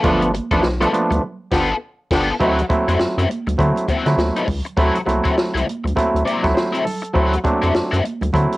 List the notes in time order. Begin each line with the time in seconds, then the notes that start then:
0.03 G1 F3 A3 B3 D4 F4 A4, kick, closed hi-hat, muted conga, low conga
0.22 muted overdriven electric guitar stroke, closed hi-hat
0.34 muted overdriven electric guitar stroke, closed hi-hat, high conga
0.51 A1 F3 A3 B3 D4 F4 A4, kick, closed hi-hat
0.63 B1, muted overdriven electric guitar stroke, snare, muted conga
0.80 F3 A3 B3 D4 F4 A4, closed hi-hat, muted conga
0.93 F3 A3 B3 D4, muted overdriven electric guitar stroke, closed hi-hat, high conga
1.10 D2, muted overdriven electric guitar stroke, closed hi-hat, low conga
1.51 G1 B3 D4 F4 G4 A4, kick, snare, crash
2.11 G1 B3 D4 F4 G4 A4, kick, snare, crash
2.40 D2 F#3 A3 C4 E4, kick, closed hi-hat
2.59 muted overdriven electric guitar stroke, closed hi-hat
2.69 F#3 A3 C4 E4, muted overdriven electric guitar stroke, kick, closed hi-hat, high conga
2.88 F2 F#3 C4 E4, closed hi-hat
2.99 F#2, muted overdriven electric guitar stroke, snare, muted conga
3.18 F#2 F#3 C4 E4, closed hi-hat
3.29 muted overdriven electric guitar stroke, closed hi-hat, high conga
3.47 D2, muted overdriven electric guitar stroke, closed hi-hat, low conga
3.57 D3 F#3 A3 C4 E4, muted overdriven electric guitar stroke, kick, closed hi-hat, muted conga, high conga
3.76 closed hi-hat, muted conga
3.88 D3 F#3 C4 E4, kick, closed hi-hat, high conga
4.06 D3 F#3 A3 C4 E4, muted overdriven electric guitar stroke, snare, closed hi-hat
4.17 D2, muted overdriven electric guitar stroke, snare, muted conga, high conga
4.35 F#3 C4 E4, closed hi-hat, muted conga
4.47 C#2, muted overdriven electric guitar stroke, kick, open hi-hat, low conga
4.65 muted overdriven electric guitar stroke, closed hi-hat
4.77 D2 F#3 A3 C4 E4, kick, closed hi-hat, muted conga
4.95 muted overdriven electric guitar stroke, closed hi-hat, muted conga
5.06 C2 F#3 A3 C4 E4, muted overdriven electric guitar stroke, closed hi-hat, high conga
5.24 F#3 C4 E4, kick, closed hi-hat
5.37 muted overdriven electric guitar stroke, snare, muted conga
5.54 C2 F#3 C4 E4, closed hi-hat, muted conga
5.67 muted overdriven electric guitar stroke, closed hi-hat, high conga
5.84 D2, muted overdriven electric guitar stroke, closed hi-hat, low conga
5.95 D2 F#3 A3 C4 E4, muted overdriven electric guitar stroke, kick, closed hi-hat, high conga
6.14 D2, closed hi-hat
6.25 F#3 C4 E4 D5, closed hi-hat, high conga
6.43 C2 F#3 A3 C4 E4, muted overdriven electric guitar stroke, kick, snare, closed hi-hat
6.54 C5, muted overdriven electric guitar stroke, snare, high conga
6.72 F#3 C4 E4, closed hi-hat, muted conga
6.85 A4, muted overdriven electric guitar stroke, open hi-hat, low conga
7.02 muted overdriven electric guitar stroke, closed hi-hat
7.14 D2 F#3 A3 C4 E4, kick, closed hi-hat, muted conga
7.33 muted overdriven electric guitar stroke, closed hi-hat, muted conga
7.44 F#3 A3 C4 D4, muted overdriven electric guitar stroke, kick, closed hi-hat, high conga
7.62 F2 F#3 C4 E4, closed hi-hat
7.74 F#2, muted overdriven electric guitar stroke, snare, muted conga
7.91 F#2 F#3 C4 E4, closed hi-hat, muted conga
8.03 muted overdriven electric guitar stroke, closed hi-hat, high conga
8.21 D2, muted overdriven electric guitar stroke, closed hi-hat, low conga
8.33 D3 F#3 A3 C4 E4, muted overdriven electric guitar stroke, kick, closed hi-hat, muted conga, high conga
8.52 closed hi-hat